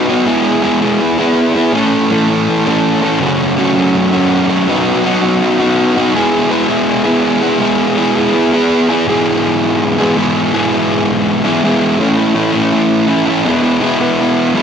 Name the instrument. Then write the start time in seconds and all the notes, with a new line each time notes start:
distorted electric guitar
Already playing: F#2
0.08 B3 D#4 F#4
0.26 G#3 B3 E4 G#4
0.62 G#3 B3 E4 G#4
0.81 B3 E4 G#4
1.18 B3 E4 G#4
1.54 B3 E4 G#4
1.73 A2 E3 A3 C#4 A4
2.10 A2 E3 A3 C#4 A4
2.28 A3 C#4 A4
2.66 A3 C#4 A4
3.02 A3 C#4 A4
3.20 F#2 C#3 F#3 A3 C#4 F#4
3.57 F#2 C#3 F#3 A3 C#4 F#4
3.75 F#3 A3 C#4 F#4
4.12 F#3 A3 C#4 F#4
4.48 F#3 A3 C#4 F#4
4.68 F#3 B3 D#4 F#4
5.03 F#3 B3 D#4 F#4
5.22 B3 D#4 F#4
5.59 B3 D#4 F#4
5.96 B3 D#4 F#4
6.15 G#3 B3 E4 G#4
6.50 G#3 B3 E4 G#4
6.68 B3 E4 G#4
7.04 B3 E4 G#4
7.41 B3 E4 G#4
7.59 G#3 B3 E4 G#4
7.96 G#3 B3 E4 G#4
8.15 B3 E4 G#4
8.52 B3 E4 G#4
8.89 B3 E4 G#4
9.07 G#2 E3 G#3 B3 E4 G#4
9.99 G#2 E3 G#3 B3 E4 G#4
10.16 G#2 E3 G#3 B3 E4 G#4
10.52 G#2 E3 G#3 B3 E4 G#4
11.44 G#2 E3 G#3 B3 E4 G#4
11.63 G#2 E3 G#3 B3 E4 G#4
11.99 A2 E3 A3 C#4 E4
12.17 A3 C#4 E4
12.34 A2 E3 A3 C#4 E4
12.53 A3 C#4 E4
13.07 E3 A3 C#4 E4
13.27 A3 C#4 E4
13.45 E2 B2 E3 G#3 B3 E4
13.62 E3 G#3 B3 E4
13.81 E2 B2 E3 G#3 B3 E4
14.00 E3 G#3 B3 E4
14.54 E3 G#3 B3 E4